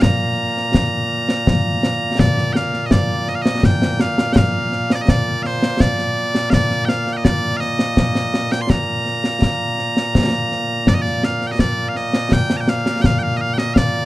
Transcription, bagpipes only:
0.00 14.05 A#2 medium
0.00 14.05 A#3 medium
0.00 2.20 A#5 medium
2.20 2.53 D5 medium
2.53 2.86 F5 medium
2.53 2.57 G5 medium
2.86 2.92 D#5 medium
2.92 3.29 D5 medium
3.29 3.35 D#5 medium
3.35 3.42 F5 medium
3.42 3.65 D#5 medium
3.65 4.01 G5 medium
4.01 4.33 F5 medium
4.33 4.37 G5 medium
4.37 4.92 F5 medium
4.92 5.02 D5 medium
4.92 4.95 D#5 medium
5.02 5.10 D#5 medium
5.10 5.43 D5 medium
5.43 5.81 C5 medium
5.43 5.46 F5 medium
5.81 6.50 D5 medium
6.50 6.85 D5 medium
6.50 6.54 F5 medium
6.85 7.13 F5 loud
6.85 6.89 G5 loud
7.13 7.25 D#5 medium
7.13 7.17 G5 medium
7.25 7.57 D5 medium
7.57 8.52 D#5 loud
7.57 7.60 F5 loud
8.52 8.61 G5 loud
8.61 8.70 C6 medium
8.70 10.88 A#5 loud
10.88 10.94 D5 medium
10.94 11.02 D#5 medium
11.02 11.24 D5 medium
11.24 11.47 F5 medium
11.47 11.51 G5 medium
11.51 11.60 D#5 medium
11.60 11.89 D5 medium
11.89 11.96 F5 medium
11.96 12.33 D#5 medium
12.33 12.57 G5 loud
12.57 12.69 G5 medium
12.57 12.60 A#5 medium
12.69 13.02 F5 medium
13.02 13.06 G5 loud
13.06 13.19 F5 loud
13.19 13.23 G5 medium
13.23 13.37 F5 loud
13.37 13.41 D#5 medium
13.41 13.54 F5 loud
13.54 13.58 G5 medium
13.58 13.74 D#5 medium
13.74 14.05 D5 medium
13.74 13.77 F5 medium

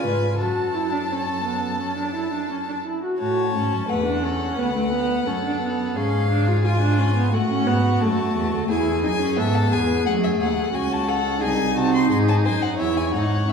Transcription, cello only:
0.04 0.41 G#2 medium
0.39 2.84 F#2 medium
3.19 3.55 A2 medium
3.54 3.71 G#2 medium
3.71 3.78 F#2 medium
3.89 4.56 E2 medium
4.58 5.25 D2 medium
5.27 5.97 F#2 medium
5.96 7.35 G#2 medium
7.33 7.66 A2 medium
7.67 8.00 G#2 medium
8.02 8.35 F#2 medium
8.36 8.52 E2 medium
8.53 8.69 D2 medium
8.70 9.05 E2 medium
9.04 9.40 F#2 medium
9.39 9.72 G#2 medium
9.73 10.06 E2 medium
10.06 10.40 F#2 medium
10.40 10.74 D#2 medium
10.74 11.44 C#2 medium
11.43 11.77 C2 medium
11.77 12.10 C3 medium
12.11 12.45 G#2 medium
12.46 12.81 F#2 medium
12.80 13.16 E2 medium
13.14 13.48 G#2 medium
13.49 13.53 A2 medium

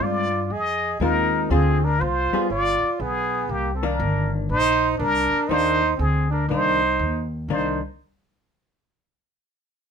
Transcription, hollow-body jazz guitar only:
0.00 0.28 G#3 medium
0.00 0.28 C4 medium
0.00 0.28 F4 medium
0.00 0.28 A#4 medium
1.01 1.51 G#3 medium
1.01 1.50 C4 medium
1.01 1.50 F4 medium
1.01 1.52 A#4 medium
1.51 1.81 D3 medium
1.51 1.81 C4 medium
1.51 1.81 F4 medium
1.51 1.81 G#4 medium
2.33 2.49 G3 medium
2.33 2.49 B3 medium
2.33 2.49 F4 medium
2.33 2.49 G#4 medium
3.83 4.47 D#3 medium
3.83 4.47 A#3 medium
3.83 4.47 D4 medium
5.51 5.81 D#3 medium
5.51 5.81 A#3 medium
5.51 5.81 D4 medium
6.50 6.80 D#3 medium
6.50 6.81 A#3 medium
6.50 6.81 D4 medium
7.50 7.80 D#3 medium
7.50 7.80 A#3 medium
7.50 7.80 D4 medium

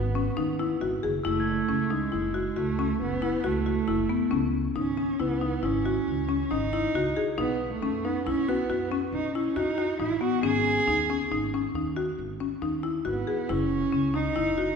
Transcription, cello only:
0.00 0.82 B3 medium
1.25 1.92 A3 medium
1.91 2.59 G#3 medium
2.57 3.01 A3 medium
3.01 3.48 B3 medium
3.46 4.33 A3 medium
4.77 5.21 C#4 medium
5.20 5.66 B3 medium
5.64 6.52 C#4 medium
6.50 7.16 D#4 medium
7.38 7.68 B3 medium
7.73 8.06 A3 medium
8.04 8.26 B3 medium
8.26 8.50 C#4 medium
8.48 8.91 B3 medium
9.14 9.34 D#4 medium
9.36 9.58 C#4 medium
9.57 10.00 D#4 medium
10.00 10.21 E4 medium
10.22 10.43 F#4 medium
10.44 11.27 G#4 medium
13.08 13.52 B3 medium
13.51 14.17 C#4 medium
14.16 14.76 D#4 medium

